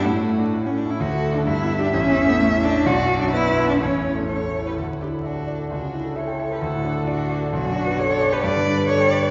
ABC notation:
X:1
M:2/4
L:1/16
Q:1/4=130
K:D
V:1 name="Violin"
F6 z2 | A4 e4- | e8 | d4 B4 |
c4 A3 G | F2 E2 D4 | D4 A3 G | F4 D4 |
D4 A3 G | B4 A2 B2 |]
V:2 name="Cello"
A,4- A, C D E | F3 D E3 D | C3 B, A,2 D2 | F3 D E3 D |
C4 c3 B | A2 G2 F4 | F4 c3 B | A4 F4 |
F4 c3 B | d4 c2 d2 |]
V:3 name="Grand piano"
(3A,,2 A,2 [DF]2 (3A,,2 A,2 [CE]2 | (3D,,2 A,2 [DF]2 (3G,,2 B,2 [DG]2 | (3A,,,2 E,,2 A,2 (3C2 E2 C2 | (3B,,,2 F,,2 F,2 (3B,2 D2 B,2 |
(3A,,,2 E,,2 A,2 (3E2 A,2 E2 | D,, A,, D A d f d A | C,, C, E A e g e A | D,, A,, D A d f d A |
B,,, F,, D B d f d B | G,, D, D B d g d B |]